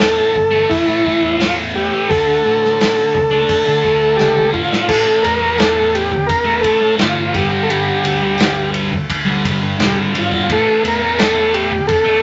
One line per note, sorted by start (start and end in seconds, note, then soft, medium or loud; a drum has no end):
0.00 0.18 E2 medium
0.00 0.32 A2 medium
0.00 0.16 E3 medium
0.00 0.13 A3 loud
0.00 0.71 A4 loud
0.00 snare loud
0.00 tambourine medium
0.14 0.33 E3 medium
0.14 0.34 A3 medium
0.33 0.62 G1 medium
0.33 muted distorted electric guitar stroke soft
0.33 kick medium
0.50 0.87 E3 medium
0.50 0.85 A3 medium
0.69 1.36 E4 medium
0.69 kick loud
0.69 open hi-hat medium
0.86 1.01 A2 medium
0.86 1.04 E3 medium
0.86 1.06 A3 medium
1.02 1.37 A2 medium
1.02 1.39 E3 medium
1.02 1.41 A3 medium
1.02 kick medium
1.22 1.88 E2 medium
1.39 1.72 A2 medium
1.39 1.74 E3 medium
1.39 1.77 A3 medium
1.39 1.56 F4 loud
1.39 snare loud
1.39 open hi-hat medium
1.39 tambourine loud
1.74 2.07 A2 medium
1.74 1.94 E3 medium
1.74 1.92 A3 medium
1.74 2.11 G4 medium
1.93 2.09 E3 medium
1.93 2.11 A3 medium
2.09 2.37 D2 loud
2.09 2.43 D3 medium
2.09 2.29 A3 loud
2.09 2.26 D4 loud
2.09 4.51 A4 medium
2.09 kick loud
2.09 open hi-hat soft
2.27 2.45 A3 medium
2.27 2.47 D4 medium
2.44 2.98 A1 loud
2.44 2.79 D3 medium
2.44 2.80 A3 medium
2.44 2.82 D4 medium
2.65 snare soft
2.80 3.13 D3 medium
2.80 2.98 A3 medium
2.80 2.95 D4 medium
2.80 snare loud
2.80 open hi-hat medium
2.80 tambourine loud
2.96 3.13 A3 medium
2.96 3.14 D4 medium
3.14 3.41 C#2 medium
3.14 muted distorted electric guitar stroke soft
3.14 kick medium
3.30 3.67 A3 medium
3.30 3.64 D4 medium
3.49 kick loud
3.49 open hi-hat medium
3.65 3.80 D3 medium
3.65 3.82 A3 medium
3.65 3.84 D4 medium
3.82 4.16 D2 medium
3.82 4.15 D3 medium
3.82 4.16 A3 medium
3.82 4.18 D4 medium
3.82 kick medium
4.16 4.51 C#2 medium
4.16 4.50 D3 medium
4.16 4.52 A3 medium
4.16 4.53 D4 loud
4.16 4.51 G4 loud
4.16 snare medium
4.16 tambourine loud
4.37 mid tom medium
4.51 4.86 A1 medium
4.51 4.84 D3 medium
4.51 4.70 A3 medium
4.51 4.67 D4 medium
4.51 4.90 F4 medium
4.51 kick medium
4.68 4.86 A3 medium
4.68 4.86 D4 medium
4.72 snare medium
4.85 5.55 A2 loud
4.85 5.41 E3 loud
4.85 5.37 A3 loud
4.85 5.26 A4 loud
4.85 crash loud
4.89 5.03 A1 loud
4.89 kick loud
4.89 tambourine soft
5.22 6.65 E2 medium
5.22 5.60 A#4 loud
5.22 ride medium
5.22 tambourine medium
5.38 5.56 E3 medium
5.38 5.58 A3 medium
5.56 6.10 A2 medium
5.56 5.77 E3 medium
5.56 5.74 A3 loud
5.56 5.95 A4 medium
5.56 ride medium
5.56 tambourine loud
5.60 snare loud
5.75 6.11 E3 medium
5.75 6.09 A3 medium
5.94 6.27 G4 medium
5.94 ride medium
6.11 muted distorted electric guitar stroke soft
6.11 kick medium
6.27 6.61 A#4 loud
6.27 kick loud
6.27 ride medium
6.27 tambourine medium
6.44 6.63 E3 medium
6.44 6.64 A3 medium
6.61 6.91 A1 loud
6.61 6.96 A2 medium
6.61 6.80 E3 medium
6.61 6.95 A4 loud
6.61 kick medium
6.61 ride medium
6.61 tambourine medium
6.65 6.80 A3 medium
6.81 muted distorted electric guitar stroke medium
6.97 7.13 G1 loud
6.97 7.31 A2 medium
6.97 7.32 E3 medium
6.97 7.33 A3 loud
6.97 7.36 F4 medium
6.97 snare loud
6.97 ride medium
6.97 tambourine medium
7.17 7.30 G1 medium
7.33 7.88 G1 loud
7.33 7.67 G2 medium
7.33 7.51 D3 medium
7.33 7.48 G3 loud
7.33 7.64 G4 medium
7.33 kick loud
7.33 ride medium
7.33 tambourine medium
7.50 7.68 D3 medium
7.50 7.69 G3 medium
7.63 7.70 A4 medium
7.68 8.36 G2 loud
7.68 8.21 D3 loud
7.68 8.19 G3 loud
7.68 8.70 G4 medium
7.68 ride medium
7.68 tambourine soft
8.04 9.47 D2 medium
8.04 ride medium
8.04 tambourine medium
8.20 8.37 D3 medium
8.20 8.39 G3 medium
8.38 8.91 G2 medium
8.38 8.57 D3 medium
8.38 8.53 G3 medium
8.38 snare loud
8.38 ride loud
8.38 tambourine medium
8.54 8.90 D3 medium
8.54 8.90 G3 medium
8.74 ride medium
8.91 muted distorted electric guitar stroke medium
8.91 kick medium
9.10 kick loud
9.10 ride loud
9.10 tambourine medium
9.25 9.44 D3 medium
9.25 9.45 G3 medium
9.43 9.71 G1 loud
9.43 9.76 G2 medium
9.43 9.62 D3 medium
9.43 9.61 G3 medium
9.43 kick medium
9.43 ride medium
9.43 tambourine medium
9.62 muted distorted electric guitar stroke medium
9.77 9.92 E1 medium
9.77 10.12 G2 medium
9.77 10.13 D3 medium
9.77 10.15 G3 loud
9.77 snare loud
9.77 ride medium
9.77 tambourine loud
9.84 9.99 G4 medium
9.96 10.36 G#1 medium
10.13 10.47 G2 medium
10.13 10.31 D3 medium
10.13 10.29 G3 medium
10.13 ride medium
10.13 tambourine medium
10.19 10.53 F4 medium
10.30 10.48 D3 medium
10.30 10.46 G3 medium
10.30 kick medium
10.48 10.63 A1 medium
10.48 11.17 A2 loud
10.48 11.03 E3 loud
10.48 11.01 A3 loud
10.48 kick loud
10.48 ride medium
10.48 tambourine soft
10.52 10.83 A4 medium
10.83 12.22 E2 medium
10.83 ride medium
10.83 tambourine medium
10.88 11.19 A#4 medium
11.01 11.18 E3 medium
11.01 11.21 A3 medium
11.18 11.71 A2 medium
11.18 11.36 E3 loud
11.18 11.34 A3 loud
11.18 11.55 A4 medium
11.18 snare loud
11.18 ride loud
11.18 tambourine loud
11.34 11.70 E3 medium
11.34 11.71 A3 medium
11.54 11.86 G4 medium
11.54 ride medium
11.71 muted distorted electric guitar stroke medium
11.71 kick medium
11.87 12.22 A4 medium
11.87 kick loud
11.87 ride medium
11.87 tambourine medium
12.04 12.22 E3 medium
12.04 12.22 A3 medium